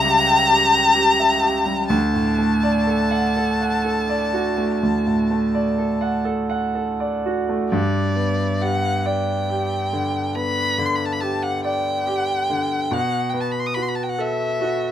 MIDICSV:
0, 0, Header, 1, 3, 480
1, 0, Start_track
1, 0, Key_signature, 1, "major"
1, 0, Tempo, 923077
1, 986, Time_signature, 12, 3, 24, 8
1, 986, Tempo, 967742
1, 3866, Tempo, 888889
1, 4826, Tempo, 863309
1, 6266, Tempo, 843882
1, 7885, End_track
2, 0, Start_track
2, 0, Title_t, "Violin"
2, 0, Program_c, 0, 40
2, 0, Note_on_c, 0, 82, 126
2, 976, Note_off_c, 0, 82, 0
2, 979, Note_on_c, 0, 81, 91
2, 3120, Note_off_c, 0, 81, 0
2, 3871, Note_on_c, 0, 74, 80
2, 4360, Note_on_c, 0, 78, 89
2, 4368, Note_off_c, 0, 74, 0
2, 4594, Note_on_c, 0, 79, 82
2, 4602, Note_off_c, 0, 78, 0
2, 5308, Note_on_c, 0, 83, 107
2, 5316, Note_off_c, 0, 79, 0
2, 5591, Note_on_c, 0, 84, 83
2, 5600, Note_off_c, 0, 83, 0
2, 5646, Note_on_c, 0, 83, 75
2, 5654, Note_off_c, 0, 84, 0
2, 5701, Note_on_c, 0, 81, 76
2, 5710, Note_off_c, 0, 83, 0
2, 5741, Note_on_c, 0, 83, 83
2, 5750, Note_off_c, 0, 81, 0
2, 5784, Note_on_c, 0, 81, 78
2, 5792, Note_off_c, 0, 83, 0
2, 5908, Note_on_c, 0, 78, 81
2, 5916, Note_off_c, 0, 81, 0
2, 6028, Note_off_c, 0, 78, 0
2, 6032, Note_on_c, 0, 79, 91
2, 6755, Note_on_c, 0, 78, 90
2, 6764, Note_off_c, 0, 79, 0
2, 6961, Note_on_c, 0, 79, 70
2, 6969, Note_off_c, 0, 78, 0
2, 7026, Note_on_c, 0, 81, 62
2, 7034, Note_off_c, 0, 79, 0
2, 7087, Note_on_c, 0, 83, 66
2, 7096, Note_off_c, 0, 81, 0
2, 7134, Note_on_c, 0, 84, 73
2, 7142, Note_off_c, 0, 83, 0
2, 7172, Note_on_c, 0, 87, 77
2, 7180, Note_off_c, 0, 84, 0
2, 7217, Note_on_c, 0, 83, 77
2, 7226, Note_off_c, 0, 87, 0
2, 7263, Note_on_c, 0, 84, 74
2, 7272, Note_off_c, 0, 83, 0
2, 7297, Note_on_c, 0, 83, 72
2, 7305, Note_off_c, 0, 84, 0
2, 7336, Note_on_c, 0, 81, 69
2, 7344, Note_off_c, 0, 83, 0
2, 7380, Note_on_c, 0, 79, 59
2, 7389, Note_off_c, 0, 81, 0
2, 7415, Note_on_c, 0, 78, 74
2, 7424, Note_off_c, 0, 79, 0
2, 7480, Note_on_c, 0, 76, 88
2, 7488, Note_off_c, 0, 78, 0
2, 7885, Note_off_c, 0, 76, 0
2, 7885, End_track
3, 0, Start_track
3, 0, Title_t, "Grand piano"
3, 0, Program_c, 1, 0
3, 0, Control_c, 1, 64, 127
3, 0, Note_on_c, 1, 37, 69
3, 0, Note_on_c, 1, 49, 51
3, 0, Note_on_c, 1, 55, 58
3, 0, Note_on_c, 1, 76, 50
3, 27, Note_on_c, 1, 67, 58
3, 94, Note_off_c, 1, 76, 0
3, 139, Note_on_c, 1, 79, 64
3, 213, Note_off_c, 1, 67, 0
3, 259, Note_on_c, 1, 67, 56
3, 329, Note_off_c, 1, 79, 0
3, 379, Note_on_c, 1, 79, 60
3, 450, Note_off_c, 1, 67, 0
3, 497, Note_on_c, 1, 67, 60
3, 570, Note_off_c, 1, 79, 0
3, 622, Note_on_c, 1, 76, 46
3, 690, Note_off_c, 1, 67, 0
3, 745, Note_on_c, 1, 67, 50
3, 815, Note_off_c, 1, 76, 0
3, 861, Note_off_c, 1, 55, 0
3, 861, Note_on_c, 1, 55, 46
3, 939, Note_off_c, 1, 67, 0
3, 966, Note_off_c, 1, 37, 0
3, 985, Note_off_c, 1, 55, 0
3, 986, Note_on_c, 1, 38, 69
3, 996, Control_c, 1, 64, 0
3, 997, Note_off_c, 1, 49, 0
3, 1078, Control_c, 1, 64, 127
3, 1107, Note_on_c, 1, 45, 45
3, 1228, Note_on_c, 1, 57, 45
3, 1297, Note_off_c, 1, 45, 0
3, 1351, Note_on_c, 1, 74, 51
3, 1418, Note_off_c, 1, 57, 0
3, 1469, Note_on_c, 1, 69, 45
3, 1539, Note_off_c, 1, 74, 0
3, 1587, Note_on_c, 1, 78, 55
3, 1659, Note_off_c, 1, 69, 0
3, 1713, Note_on_c, 1, 69, 51
3, 1779, Note_off_c, 1, 78, 0
3, 1836, Note_on_c, 1, 78, 46
3, 1903, Note_off_c, 1, 69, 0
3, 1952, Note_on_c, 1, 69, 47
3, 2024, Note_off_c, 1, 78, 0
3, 2076, Note_on_c, 1, 74, 48
3, 2142, Note_off_c, 1, 69, 0
3, 2196, Note_on_c, 1, 66, 51
3, 2265, Note_off_c, 1, 74, 0
3, 2316, Note_on_c, 1, 57, 44
3, 2386, Note_off_c, 1, 66, 0
3, 2411, Note_off_c, 1, 38, 0
3, 2440, Note_on_c, 1, 38, 49
3, 2508, Note_off_c, 1, 57, 0
3, 2557, Note_on_c, 1, 45, 37
3, 2678, Note_on_c, 1, 57, 44
3, 2746, Note_off_c, 1, 45, 0
3, 2795, Note_on_c, 1, 74, 47
3, 2865, Note_off_c, 1, 57, 0
3, 2914, Note_on_c, 1, 69, 47
3, 2980, Note_off_c, 1, 74, 0
3, 3026, Note_on_c, 1, 78, 52
3, 3098, Note_off_c, 1, 69, 0
3, 3145, Note_on_c, 1, 69, 50
3, 3215, Note_off_c, 1, 78, 0
3, 3267, Note_on_c, 1, 78, 50
3, 3336, Note_off_c, 1, 69, 0
3, 3392, Note_on_c, 1, 69, 46
3, 3460, Note_off_c, 1, 78, 0
3, 3517, Note_on_c, 1, 74, 45
3, 3586, Note_off_c, 1, 69, 0
3, 3645, Note_on_c, 1, 66, 47
3, 3710, Note_off_c, 1, 74, 0
3, 3761, Note_on_c, 1, 57, 46
3, 3830, Note_off_c, 1, 66, 0
3, 3853, Note_off_c, 1, 38, 0
3, 3873, Note_off_c, 1, 57, 0
3, 3875, Note_on_c, 1, 43, 68
3, 3879, Control_c, 1, 64, 0
3, 3968, Control_c, 1, 64, 127
3, 4113, Note_on_c, 1, 59, 45
3, 4357, Note_on_c, 1, 67, 43
3, 4498, Note_off_c, 1, 59, 0
3, 4597, Note_on_c, 1, 74, 52
3, 4737, Note_off_c, 1, 67, 0
3, 4837, Note_on_c, 1, 67, 44
3, 4973, Note_off_c, 1, 74, 0
3, 5074, Note_on_c, 1, 50, 44
3, 5212, Note_off_c, 1, 67, 0
3, 5285, Note_off_c, 1, 43, 0
3, 5312, Note_on_c, 1, 59, 47
3, 5452, Note_off_c, 1, 50, 0
3, 5550, Note_on_c, 1, 50, 52
3, 5693, Note_off_c, 1, 59, 0
3, 5793, Note_on_c, 1, 67, 49
3, 5933, Note_off_c, 1, 50, 0
3, 6029, Note_on_c, 1, 74, 42
3, 6176, Note_off_c, 1, 67, 0
3, 6267, Note_on_c, 1, 67, 52
3, 6415, Note_off_c, 1, 74, 0
3, 6508, Note_on_c, 1, 50, 48
3, 6653, Note_off_c, 1, 67, 0
3, 6744, Note_on_c, 1, 47, 64
3, 6747, Note_off_c, 1, 50, 0
3, 6758, Control_c, 1, 64, 0
3, 6853, Control_c, 1, 64, 127
3, 6986, Note_on_c, 1, 59, 53
3, 7229, Note_on_c, 1, 66, 45
3, 7371, Note_off_c, 1, 59, 0
3, 7468, Note_on_c, 1, 69, 53
3, 7616, Note_off_c, 1, 66, 0
3, 7711, Note_on_c, 1, 66, 54
3, 7853, Note_off_c, 1, 69, 0
3, 7885, Note_off_c, 1, 47, 0
3, 7885, Note_off_c, 1, 66, 0
3, 7885, End_track
0, 0, End_of_file